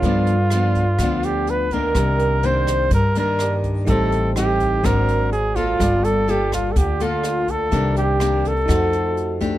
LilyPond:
<<
  \new Staff \with { instrumentName = "Alto flute" } { \time 4/4 \key g \minor \tempo 4 = 125 r2 r8 g'8 b'8 bes'8~ | bes'4 c''4 bes'8 bes'4 r8 | a'4 g'4 bes'4 aes'8 f'8~ | f'8 a'8 g'8 f'16. a'32 g'8 f'4 a'8~ |
a'8 g'4 a'2 r8 | }
  \new Staff \with { instrumentName = "Flugelhorn" } { \time 4/4 \key g \minor f'2~ f'8 g'8 b'8 bes'8~ | bes'4 c''4 bes'8 bes'4 r8 | a'4 g'4 bes'4 aes'8 f'8~ | f'8 a'8 g'8 f'16. a'32 g'8 f'4 a'8~ |
a'8 g'4 a'2 r8 | }
  \new Staff \with { instrumentName = "Tine electric piano" } { \time 4/4 \key g \minor <f' a' b' d''>1 | <g' bes' d''>2. <g' bes' d''>4 | <ees' g' a' c''>2 <ges' c'' d''>2 | <f' a' d''>1 |
<g' bes' d''>2 <ees' ges' a' c''>2 | }
  \new Staff \with { instrumentName = "Nylon-string guitar" } { \time 4/4 \key g \minor << { <f b d'>8 r8 <f b d'>8 r8 <f b d'>4. <ees bes d'>8~ | <ees bes d'>4 <ees bes d'>4 r8 <ees bes d'>4. | <g c' ees'>4 <g c' ees'>4 <ges c' d'>4 r8 <bes f' a'>8~ | <bes f' a'>4 <bes f' a'>4. <bes f' a'>4. |
<ees bes d'>4 <ees bes d'>8 r8 <a ees' ges'>4. <a d' g'>8 | } \\ { g,2 d2 | c2 g,2 | a,2 aes,2 | g2 d2 |
c2 f2 | } >> }
  \new Staff \with { instrumentName = "Upright bass" } { \clef bass \time 4/4 \key g \minor g,2 d,2 | c,2 g,2 | a,,2 aes,,2 | g,,2 d,2 |
c,2 f,2 | }
  \new DrumStaff \with { instrumentName = "Drums" } \drummode { \time 4/4 <hh bd>8 hh8 <hh ss>8 <hh bd>8 <hh bd ss>8 hh8 hh8 <hh bd>8 | <hh bd ss>8 hh8 hh8 <hh bd ss>8 <hh bd>8 hh8 <hh ss>8 <hh bd>8 | <hh bd>8 hh8 <hh ss>8 <hh bd>8 <hh bd ss>8 hh8 hh8 <hh bd>8 | <hh bd ss>8 hh8 hh8 <hh bd ss>8 <hh bd>8 hh8 <hh ss>8 <hh bd>8 |
<hh bd>8 hh8 <hh ss>8 <hh bd>8 <hh bd ss>8 hh8 hh8 <hh bd>8 | }
>>